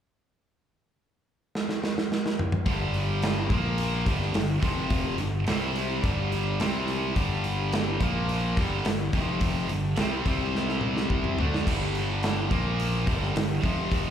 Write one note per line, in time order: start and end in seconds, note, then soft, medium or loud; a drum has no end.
1.55 snare medium
1.69 snare medium
1.84 snare medium
1.98 snare loud
2.12 snare medium
2.26 snare medium
2.39 mid tom medium
2.52 mid tom loud
2.66 3.47 G1 medium
2.66 3.50 G2 medium
2.66 3.49 D3 loud
2.66 3.50 G3 loud
2.66 kick loud
2.66 open hi-hat medium
2.94 open hi-hat medium
3.22 snare loud
3.22 open hi-hat medium
3.49 4.03 A#1 medium
3.49 4.06 A#2 medium
3.49 4.06 F3 medium
3.49 4.06 A#3 loud
3.49 kick loud
3.49 open hi-hat medium
3.78 open hi-hat medium
4.05 4.33 G1 loud
4.05 4.34 G2 medium
4.05 4.34 D3 medium
4.05 4.35 G3 medium
4.05 kick loud
4.05 open hi-hat medium
4.22 snare soft
4.34 4.61 G1 medium
4.34 4.58 G2 medium
4.34 4.58 D3 medium
4.34 snare loud
4.34 open hi-hat medium
4.62 5.15 F1 medium
4.62 5.18 F2 loud
4.62 5.19 C3 medium
4.62 5.19 F3 loud
4.62 kick loud
4.62 open hi-hat medium
4.90 kick loud
4.90 open hi-hat medium
5.18 5.45 G1 medium
5.18 5.42 G2 medium
5.18 5.42 D3 medium
5.18 open hi-hat medium
5.46 5.99 C2 medium
5.46 6.03 C3 medium
5.46 6.03 G3 loud
5.46 6.04 C4 medium
5.46 snare loud
5.46 open hi-hat medium
5.76 open hi-hat medium
6.03 6.56 G1 medium
6.03 6.59 G2 loud
6.03 6.59 D3 medium
6.03 6.59 G3 loud
6.03 kick loud
6.03 open hi-hat medium
6.32 open hi-hat medium
6.60 7.12 C2 loud
6.60 7.16 C3 medium
6.60 7.16 G3 loud
6.60 7.17 C4 loud
6.60 snare loud
6.60 open hi-hat medium
6.88 open hi-hat medium
7.16 7.97 G1 medium
7.16 8.00 G2 medium
7.16 8.00 D3 loud
7.16 8.01 G3 loud
7.16 kick loud
7.16 open hi-hat medium
7.44 open hi-hat medium
7.72 snare loud
7.72 open hi-hat medium
8.00 8.53 A#1 loud
8.00 8.56 A#2 medium
8.00 8.57 F3 loud
8.00 8.57 A#3 medium
8.00 kick loud
8.00 open hi-hat medium
8.29 open hi-hat medium
8.57 8.83 G1 medium
8.57 8.84 G2 medium
8.57 8.85 D3 medium
8.57 8.85 G3 loud
8.57 kick loud
8.57 open hi-hat medium
8.85 9.12 G1 medium
8.85 9.08 G2 medium
8.85 9.08 D3 medium
8.85 snare loud
8.85 open hi-hat medium
9.13 9.66 F1 medium
9.13 9.69 F2 loud
9.13 9.69 C3 loud
9.13 9.69 F3 loud
9.13 kick loud
9.13 snare soft
9.13 open hi-hat medium
9.41 kick loud
9.41 open hi-hat medium
9.69 9.96 G1 medium
9.69 9.92 G2 medium
9.69 9.93 D3 medium
9.69 open hi-hat medium
9.96 10.24 C2 loud
9.96 10.24 C3 medium
9.96 10.25 G3 medium
9.96 10.25 C4 medium
9.96 snare loud
9.96 open hi-hat medium
10.25 11.35 C2 medium
10.25 11.37 C3 medium
10.25 11.38 G3 loud
10.25 11.38 C4 loud
10.25 kick loud
10.25 open hi-hat medium
10.55 snare medium
10.69 snare medium
10.81 mid tom medium
10.97 snare medium
11.10 kick medium
11.24 mid tom medium
11.38 11.65 D2 medium
11.38 11.65 D3 medium
11.38 11.66 A3 loud
11.38 11.66 D4 loud
11.38 floor tom medium
11.54 snare medium
11.66 12.47 G1 medium
11.66 12.50 G2 medium
11.66 12.50 D3 medium
11.66 12.51 G3 loud
11.66 kick loud
11.66 open hi-hat medium
11.66 crash loud
11.95 open hi-hat medium
12.23 snare loud
12.23 open hi-hat medium
12.51 13.04 A#1 medium
12.51 13.06 A#2 loud
12.51 13.07 F3 loud
12.51 13.07 A#3 loud
12.51 kick loud
12.51 open hi-hat medium
12.80 open hi-hat medium
13.07 13.34 G1 loud
13.07 13.34 G2 medium
13.07 13.34 D3 medium
13.07 13.35 G3 medium
13.07 kick loud
13.07 open hi-hat medium
13.22 snare soft
13.35 13.62 G1 medium
13.35 13.58 G2 medium
13.35 13.58 D3 medium
13.35 snare loud
13.35 open hi-hat medium
13.63 14.10 F1 medium
13.63 14.10 F2 medium
13.63 14.10 C3 loud
13.63 14.10 F3 loud
13.63 kick loud
13.63 open hi-hat medium
13.92 kick loud
13.92 open hi-hat medium